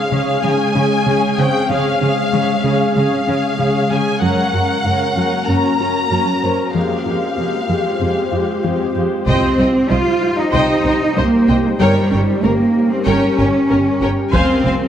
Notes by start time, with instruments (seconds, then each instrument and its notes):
Already playing: ambient pad C#3 G#3 G#4 F5, felt piano G#3 G#4, viola section C#4 G#4, violin section F5
0.12 synth arpeggio sound C#3, cello section C#3, viola section C#4 G#4
0.43 cello section C#3, synth arpeggio sound G#3, viola section C#4 G#4, violin section G#5
0.75 cello section C#3, synth arpeggio sound C#4, viola section C#4 G#4
1.06 synth arpeggio sound C#3, cello section C#3, viola section C#4 G#4
1.38 cello section C#3, felt piano C4 C5, viola section C#4 G#4, violin section G5
1.70 synth arpeggio sound C#3, cello section C#3, viola section C#4 G#4, violin section F5
2.01 cello section C#3, viola section C#4 G#4, synth arpeggio sound C#4
2.33 cello section C#3, synth arpeggio sound G#3, viola section C#4 G#4
2.64 synth arpeggio sound C#3, cello section C#3, viola section C#4 G#4, felt piano G#4
2.96 cello section C#3, synth arpeggio sound G#3, viola section C#4 G#4, violin section F5
3.28 cello section C#3, viola section C#4 G#4, synth arpeggio sound C#4
3.59 synth arpeggio sound C#3, cello section C#3, viola section C#4 G#4
3.91 cello section C#3, viola section C#4 G#4, violin section G#5
4.22 cello section F#2, synth arpeggio sound F#3, ambient pad A#3 C#4 F#4 A#4, viola section C#4 A#4, violin section F#5
4.54 cello section F#2, viola section C#4 A#4, synth arpeggio sound F#4
4.85 cello section F#2, viola section C#4 A#4, synth arpeggio sound C#4
5.17 cello section F#2, synth arpeggio sound F#3, viola section C#4 A#4
5.48 cello section F#2, viola section C#4 A#4, synth arpeggio sound C#4, violin section A#5
5.80 cello section F#2, viola section C#4 A#4, synth arpeggio sound F#4
6.11 cello section F#2, synth arpeggio sound F#3, viola section C#4 A#4
6.43 cello section F#2, viola section C#4 A#4, felt piano C5
6.74 cello section F2, synth arpeggio sound F3, viola section G#3 G4, ambient pad G#3 F4 G4 C5, violin section F5
7.06 cello section F2, viola section G#3 G4, synth arpeggio sound F4
7.37 cello section F2, viola section G#3 G4, synth arpeggio sound C4
7.69 cello section F2, synth arpeggio sound F3, viola section G#3 G4
8.01 cello section F2, viola section G#3 G4, synth arpeggio sound C4
8.32 cello section F2, viola section G#3 G4, synth arpeggio sound F4
8.63 cello section F2, synth arpeggio sound F3, viola section G#3 G4, felt piano C4 C5
8.96 cello section F2, viola section G#3 G4
9.27 double bass section C2, synth arpeggio sound C3, ambient pad G3 D#4 G4 C5, cello section C4, viola section C5, violin section D#5 G5, taiko
9.59 double bass section C2, synth arpeggio sound G3, viola section C5, violin section D#5 G5
9.90 double bass section C2, synth arpeggio sound G3, cello section F4, viola section C5, violin section C5 D#5
10.21 felt piano F4 F5
10.38 cello section D#4
10.53 double bass section C2, synth arpeggio sound C3, cello section D#4, viola section C5, violin section D#5 G5
10.85 double bass section C2, synth arpeggio sound C4, viola section C5, violin section D#5 G5
11.17 double bass section C2, synth arpeggio sound G3, cello section A#3, viola section C5, violin section C5 D#5
11.48 double bass section C2, synth arpeggio sound C4, felt piano G4 G5, viola section C5, violin section D#5 G5
11.65 cello section G#3
11.80 double bass section G1, synth arpeggio sound G3, cello section G3, ambient pad C#4 A#4, viola section A#4, violin section C#5 G5
12.11 double bass section G1, synth arpeggio sound C#4, viola section A#4, violin section C#5 G5
12.43 double bass section G1, cello section A#3, synth arpeggio sound C#4, viola section A#4, violin section A#4 C#5
12.91 cello section C4
13.06 double bass section G1, synth arpeggio sound G3, cello section C#4, viola section A#4, violin section C#5 G5
13.38 double bass section G1, synth arpeggio sound G4, viola section A#4, violin section C#5 G5
13.70 double bass section G1, synth arpeggio sound C#4, viola section A#4, violin section A#4 C#5
14.01 double bass section G1, synth arpeggio sound G4, viola section A#4, violin section C#5 G5
14.32 double bass section F1, synth arpeggio sound F3, ambient pad F3 G#3 F4 C5, cello section C4, viola section C5, violin section F5 G#5, taiko
14.64 double bass section F1, synth arpeggio sound C4, viola section C5, violin section F5 G#5